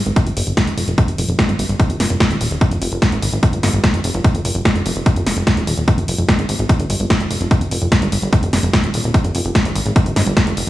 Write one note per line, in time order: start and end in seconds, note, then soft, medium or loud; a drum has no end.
0.06 0.12 G#1 medium
0.06 closed hi-hat medium
0.16 kick loud
0.16 closed hi-hat medium
0.27 0.32 G1 medium
0.27 closed hi-hat medium
0.37 0.43 G1 loud
0.37 open hi-hat loud
0.47 0.53 G1 medium
0.47 closed hi-hat medium
0.57 kick loud
0.57 snare loud
0.57 closed hi-hat medium
0.67 0.73 F1 medium
0.67 closed hi-hat medium
0.78 0.83 F1 loud
0.78 open hi-hat loud
0.88 0.94 F1 medium
0.88 closed hi-hat medium
0.98 kick loud
0.98 closed hi-hat medium
1.08 1.14 F1 medium
1.08 closed hi-hat medium
1.18 1.24 F1 loud
1.18 open hi-hat loud
1.29 1.34 F1 medium
1.29 closed hi-hat medium
1.39 kick loud
1.39 snare loud
1.39 closed hi-hat medium
1.49 1.55 G1 medium
1.49 closed hi-hat medium
1.59 1.65 G1 loud
1.59 open hi-hat loud
1.69 1.75 G1 medium
1.69 closed hi-hat medium
1.80 kick loud
1.80 closed hi-hat medium
1.90 1.96 F1 medium
1.90 closed hi-hat soft
2.00 2.06 F1 loud
2.00 snare medium
2.00 open hi-hat loud
2.10 2.16 F1 medium
2.10 closed hi-hat medium
2.20 kick loud
2.20 snare loud
2.20 closed hi-hat medium
2.31 2.37 D#1 medium
2.31 closed hi-hat medium
2.41 2.47 D#1 loud
2.41 open hi-hat loud
2.51 2.57 D#1 loud
2.51 closed hi-hat medium
2.61 kick loud
2.61 closed hi-hat medium
2.71 2.77 F1 medium
2.71 closed hi-hat medium
2.82 2.88 F1 loud
2.82 open hi-hat loud
2.92 2.98 F1 medium
2.92 closed hi-hat soft
3.02 kick loud
3.02 snare loud
3.02 closed hi-hat medium
3.12 3.18 G#1 medium
3.12 closed hi-hat medium
3.22 3.28 G#1 loud
3.22 open hi-hat loud
3.33 3.39 G#1 medium
3.33 closed hi-hat medium
3.43 kick loud
3.43 closed hi-hat medium
3.53 3.59 G1 medium
3.53 closed hi-hat medium
3.63 3.69 G1 loud
3.63 snare medium
3.63 open hi-hat loud
3.73 3.79 G1 medium
3.73 closed hi-hat soft
3.84 kick loud
3.84 snare loud
3.84 closed hi-hat medium
3.94 4.00 F1 medium
3.94 closed hi-hat medium
4.04 4.10 F1 loud
4.04 open hi-hat loud
4.14 4.20 F1 loud
4.14 closed hi-hat medium
4.24 kick loud
4.24 closed hi-hat medium
4.35 4.41 F1 medium
4.35 closed hi-hat medium
4.45 4.51 F1 loud
4.45 open hi-hat loud
4.55 4.61 F1 medium
4.55 closed hi-hat soft
4.65 kick loud
4.65 snare loud
4.65 closed hi-hat medium
4.75 4.81 F1 medium
4.75 closed hi-hat soft
4.86 4.92 F1 loud
4.86 open hi-hat loud
4.96 5.02 F1 medium
4.96 closed hi-hat medium
5.06 kick loud
5.06 closed hi-hat medium
5.16 5.22 F1 medium
5.16 closed hi-hat medium
5.26 5.32 F1 loud
5.26 snare medium
5.26 open hi-hat loud
5.37 5.43 F1 medium
5.37 closed hi-hat medium
5.47 kick loud
5.47 snare loud
5.47 closed hi-hat medium
5.57 5.63 D#1 medium
5.57 closed hi-hat medium
5.67 5.73 D#1 loud
5.67 open hi-hat loud
5.78 5.83 D#1 medium
5.78 closed hi-hat medium
5.88 kick loud
5.88 closed hi-hat medium
5.98 6.04 F1 medium
5.98 closed hi-hat medium
6.08 6.14 F1 loud
6.08 open hi-hat loud
6.18 6.24 F1 medium
6.18 closed hi-hat medium
6.29 kick loud
6.29 snare loud
6.29 closed hi-hat medium
6.39 6.45 G#1 medium
6.39 closed hi-hat soft
6.49 6.55 G#1 loud
6.49 open hi-hat loud
6.59 6.65 G#1 medium
6.59 closed hi-hat soft
6.69 kick loud
6.69 closed hi-hat medium
6.80 6.86 G1 medium
6.80 closed hi-hat medium
6.90 6.96 G1 loud
6.90 open hi-hat loud
7.00 7.06 G1 medium
7.00 closed hi-hat medium
7.10 kick loud
7.10 snare loud
7.10 closed hi-hat medium
7.20 7.26 F1 medium
7.20 closed hi-hat medium
7.31 7.37 F1 loud
7.31 open hi-hat loud
7.41 7.47 F1 loud
7.41 closed hi-hat medium
7.51 kick loud
7.51 closed hi-hat medium
7.61 7.67 F1 medium
7.61 closed hi-hat medium
7.71 7.77 F1 loud
7.71 open hi-hat loud
7.82 7.88 F1 medium
7.82 closed hi-hat medium
7.92 kick loud
7.92 snare loud
7.92 closed hi-hat medium
8.02 8.08 G1 medium
8.02 closed hi-hat medium
8.12 8.18 G1 loud
8.12 open hi-hat loud
8.22 8.28 G1 medium
8.22 closed hi-hat medium
8.33 kick loud
8.33 closed hi-hat medium
8.43 8.49 F1 medium
8.43 closed hi-hat medium
8.53 8.59 F1 loud
8.53 snare medium
8.53 open hi-hat loud
8.63 8.69 F1 medium
8.63 closed hi-hat medium
8.73 kick loud
8.73 snare loud
8.73 closed hi-hat medium
8.84 8.90 D#1 medium
8.84 closed hi-hat medium
8.94 9.00 D#1 loud
8.94 open hi-hat loud
9.04 9.10 D#1 medium
9.04 closed hi-hat medium
9.14 kick loud
9.14 closed hi-hat medium
9.24 9.30 F1 medium
9.24 closed hi-hat medium
9.35 9.41 F1 loud
9.35 open hi-hat loud
9.45 9.51 F1 medium
9.45 closed hi-hat medium
9.55 kick loud
9.55 snare loud
9.55 closed hi-hat medium
9.65 9.71 G#1 medium
9.65 closed hi-hat medium
9.75 9.81 G#1 loud
9.75 open hi-hat loud
9.86 9.92 G#1 medium
9.86 closed hi-hat medium
9.96 kick loud
9.96 closed hi-hat medium
10.06 10.12 G1 medium
10.06 closed hi-hat medium
10.16 10.22 G1 loud
10.16 snare medium
10.16 open hi-hat loud
10.26 10.32 G1 medium
10.26 closed hi-hat medium
10.37 kick loud
10.37 snare loud
10.37 closed hi-hat medium
10.47 10.53 F1 medium
10.47 closed hi-hat medium
10.57 10.63 F1 loud
10.57 open hi-hat loud